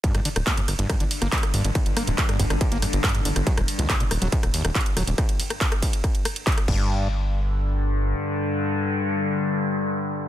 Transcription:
<<
  \new Staff \with { instrumentName = "Synth drone" } { \clef bass \time 4/4 \key c \dorian \tempo 4 = 140 <g, d>1~ | <g, d>1~ | <g, d>1 | r2. r8 <g, d>8~ |
<g, d>1~ | <g, d>1 | }
  \new Staff \with { instrumentName = "Acid bass" } { \clef bass \time 4/4 \key c \dorian g,16 g,16 d16 r16 bes16 fis,16 r16 g,16 r16 d16 r16 bes16 fis,16 r16 g,16 g,16 | d16 r16 bes16 fis,16 r16 g,16 g,16 d16 r16 bes16 fis,16 r16 g,16 g,16 d16 r16 | ges16 cis,16 r16 ees,16 ees,16 bes,16 r16 ges16 cis,16 r16 ees,16 ees,16 bes,16 r16 ges16 cis,16 | r2. r8 g,8~ |
g,8 r2. r8 | r1 | }
  \new Staff \with { instrumentName = "Analog synth bass" } { \clef bass \time 4/4 \key c \dorian r16 g,,16 r16 d,,16 r8 g,,16 g,,16 r16 g,,16 r16 g,,16 r8 g,,16 g,,16 | r16 g,,16 r16 d,,16 r8 g,,16 g,,16 r16 g,,16 r16 g,,16 r8 g,,16 g,,16 | r16 ees,,16 r16 cis,16 r8 ees,,16 ees,,16 r16 ees,,16 r16 ees,,16 r8 ees,,16 ees,,16 | r2. r8 g,,8~ |
g,,2. r4 | r1 | }
  \new DrumStaff \with { instrumentName = "Drums" } \drummode { \time 4/4 <hh bd cymr>16 <hh cymr ss>16 <hho cymr>16 <hh cymr ss>16 <hc hh bd cymr>16 <hh cymr>16 <hho cymr ss>16 <hh cymr>16 <hh bd cymr ss>16 <hh cymr>16 <hho cymr>16 <hh cymr ss>16 <hc hh bd cymr>32 hh32 <hh cymr ss>16 <hho cymr>16 <hh cymr>16 | <hh bd cymr ss>16 <hh cymr>16 <hho cymr ss>16 <hh cymr>16 <hc hh bd cymr>16 <hh cymr ss>16 <hho bd cymr>16 <hh cymr ss>16 <hh bd cymr>16 <hh cymr>16 <hho cymr ss>16 <hh cymr>16 <hc hh bd cymr ss>32 hh32 <hh cymr>16 <hho cymr>16 <hh cymr ss>16 | <hh bd cymr>16 <hh cymr ss>16 <hho cymr>16 <hh cymr>16 <hc hh bd cymr ss>16 <hh cymr>16 <hho cymr ss>16 <hh cymr>16 <hh bd cymr>16 <hh cymr ss>16 <hho cymr>16 <hh cymr ss>16 <hc hh bd cymr>32 hh32 <hh cymr>16 <hho cymr ss>16 <hh cymr>16 | <hh bd cymr ss>16 <hh cymr>16 <hho cymr>16 <hh cymr ss>16 <hc hh bd cymr>16 <hh cymr ss>16 <hho bd cymr>16 <hh cymr>16 <hh bd cymr ss>16 <hh cymr>16 <hho cymr ss>16 <hh cymr>16 <hc hh bd cymr>32 hh32 <hh cymr ss>16 <cymc bd>8 |
r4 r4 r4 r4 | r4 r4 r4 r4 | }
>>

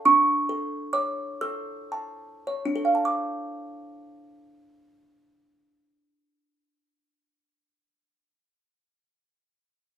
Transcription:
\new Staff \with { instrumentName = "Music box" } { \time 6/8 \key d \minor \tempo 4. = 35 << { cis'''4 d'''8 e'''4. | <d' a' f'' a'' d'''>2.~ | <d' a' f'' a'' d'''>2. | } \\ { d'8 a'8 cis''8 a'8 a''8 cis''8 | r2. | r2. | } >> }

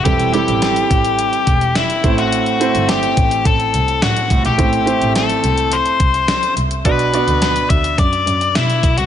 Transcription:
<<
  \new Staff \with { instrumentName = "Lead electric guitar" } { \time 4/4 \key a \dorian \tempo 4 = 106 g'8 g'2~ g'8 e'8. fis'16~ | fis'4 g'4 a'4 fis'8. g'16~ | g'4 a'4 c''4. r8 | b'4. e''8 d''4 e'8. fis'16 | }
  \new Staff \with { instrumentName = "Grand piano" } { \time 4/4 \key a \dorian <g c' e' a'>8 <g c' e' a'>4. r4. <a c' e' c''>8~ | <a c' e' c''>8 <a c' e' c''>4. r2 | <a c' e' c''>8 <a c' e' c''>4. r2 | <b d' fis' d''>8 <b d' fis' d''>4. r2 | }
  \new Staff \with { instrumentName = "Grand piano" } { \clef bass \time 4/4 \key a \dorian e4. r2 a,8~ | a,4 r2 r8 a,8~ | a,4 r2. | b,4. r2 r8 | }
  \new Staff \with { instrumentName = "Double bass" } { \clef bass \time 4/4 \key a \dorian e,,16 r8 a,,8 r16 a,,8. r16 e,,8 r8 a,,8~ | a,,16 r8 g,,8 r16 a,,8 a,,8 c,8 a,16 r16 c,16 ais,,16 | a,,16 r8 a,,8 r16 c,8. r16 c,8 r8 c,8 | b,,16 r8 d,8 r16 d,8 fis,8 fis,8 b,16 r16 b,,16 c,16 | }
  \new DrumStaff \with { instrumentName = "Drums" } \drummode { \time 4/4 <hh bd>16 hh16 hh16 hh16 <hh sn>16 hh16 <hh bd>16 hh16 hh16 hh16 <hh bd>16 hh16 <hh sn>16 hh16 <hh bd>16 hh16 | hh16 hh16 hh16 hh16 <hh sn>16 hh16 <hh bd>16 hh16 <hh bd>16 hh16 hh16 hh16 <hh sn>16 hh16 <hh bd>16 hh16 | <hh bd>16 hh16 hh16 hh16 <hh sn>16 hh16 hh16 hh16 hh16 hh16 <hh bd>16 hh16 <hh sn>16 hh16 hh16 hh16 | <hh bd>16 hh16 hh16 hh16 <hh sn>16 hh16 <hh bd>16 hh16 <hh bd>16 hh16 hh16 hh16 <hh sn>16 hh16 <hh bd>16 hh16 | }
>>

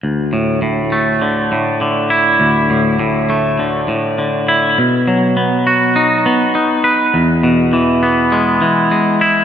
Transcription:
\new Staff \with { instrumentName = "Clean electric guitar" } { \clef bass \time 4/4 \key d \lydian \tempo 4 = 101 d,8 a,8 a,8 a8 d8 a,8 d8 e'8 | d,8 a,8 a,8 a8 d8 a,8 d8 e'8 | b,8 fis8 b8 fis'8 dis'8 b8 dis'8 b'8 | e,8 b,8 e8 b8 gis8 e8 gis8 e'8 | }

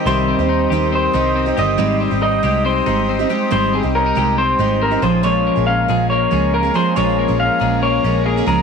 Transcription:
<<
  \new Staff \with { instrumentName = "Analog synth pad" } { \time 4/4 \key aes \major \tempo 4 = 139 << { <c'' ees'''>1~ | <c'' ees'''>1~ | <c'' ees'''>2.~ <c'' ees'''>8 <bes' bes''>8~ | <bes' bes''>1~ |
<bes' bes''>1 | } \\ { <ees'' g''>1 | ees''1~ | ees''2.~ ees''8 <f'' aes''>8~ | <f'' aes''>1~ |
<f'' aes''>1 | } >> }
  \new Staff \with { instrumentName = "Clean electric guitar" } { \time 4/4 \key aes \major c''2 c''4. ees''8~ | ees''8 r8 ees''4 c''2 | c''8 aes'8 bes'4 c''4 bes'8 c''8 | des''4 f''4 des''4 bes'8 c''8 |
des''4 f''4 des''4 aes'8 bes'8 | }
  \new Staff \with { instrumentName = "Steel-string acoustic guitar" } { \time 4/4 \key aes \major <c ees c' ees' g'>8. <c' ees' g'>8. <ees c' ees' g'>4 <ees c' ees' g'>8. <c' ees' g'>16 <ees c' ees' g'>8 | <aes c' ees' g'>8. <c' ees' g'>8. <aes c' ees' g'>4 <aes c' ees' g'>8. <c' ees' g'>16 <aes c' ees' g'>8 | <aes c' ees' g'>8. <c' ees' g'>8. <aes c' ees' g'>4 <aes c' ees' g'>8. <c' ees' g'>16 <f aes des' aes'>8 | <bes, f aes des' aes'>8. <aes des' aes'>8. <f aes des' aes'>4 <f aes des' aes'>8. <aes des' aes'>16 <f aes des' aes'>8 |
<bes, f aes des' aes'>8. <aes des' aes'>8. <f aes des' aes'>4 <f aes des' aes'>8. <aes des' aes'>16 <f aes des' aes'>8 | }
  \new Staff \with { instrumentName = "Clean electric guitar" } { \time 4/4 \key aes \major <g c' ees' g'>8 c'8 ees'8 g'8 c'8 ees'8 c'8 g'8 | g8 c'8 ees'8 g'8 c'8 ees'8 c'8 g'8 | g8 c'8 des'16 ees'16 g'8 c'8 ees'8 c'8 f8 | f8 bes8 des'8 aes'8 bes8 des'8 bes8 aes'8 |
f8 bes8 des'8 aes'8 bes8 des'8 bes8 aes'8 | }
  \new Staff \with { instrumentName = "Picked electric bass" } { \clef bass \time 4/4 \key aes \major c,8. ees,8. ees,4 c,4 g,,8 | aes,,8. aes,,8. c,4 aes,,4 r8 | aes,,8. c,8. c,4 aes,,4 bes,,8~ | bes,,8. bes,,8. bes,,4 des,4 r8 |
bes,,8. bes,,8 r16 bes,,4 bes,,4 des,8 | }
>>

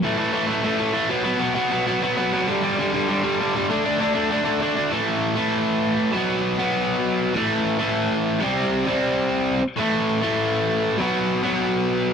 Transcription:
\new Staff \with { instrumentName = "Overdriven electric guitar" } { \clef bass \time 4/4 \key a \lydian \tempo 4 = 198 <a, e a>8 <a, e a>8 <a, e a>8 <a, e a>8 <a, e a>8 <a, e a>8 <a, e a>8 <b, fis b>8 | <b, fis b>8 <b, fis b>8 <b, fis b>8 <b, fis b>8 <b, fis b>8 <b, fis b>8 <b, fis b>8 <b, fis b>8 | <g, d g>8 <g, d g>8 <g, d g>8 <g, d g>8 <g, d g>8 <g, d g>8 <g, d g>8 <g, d g>8 | <d a d'>8 <d a d'>8 <d a d'>8 <d a d'>8 <d a d'>8 <d a d'>8 <d a d'>8 <d a d'>8 |
<a, e a>4. <a, e a>2~ <a, e a>8 | <b, fis b>4. <b, fis b>2~ <b, fis b>8 | <a, e a>4. <a, e a>2 <c g c'>8~ | <c g c'>4 <c g c'>2~ <c g c'>8 r8 |
<a, e a>4. <a, e a>2~ <a, e a>8 | <b, fis b>4. <b, fis b>2~ <b, fis b>8 | }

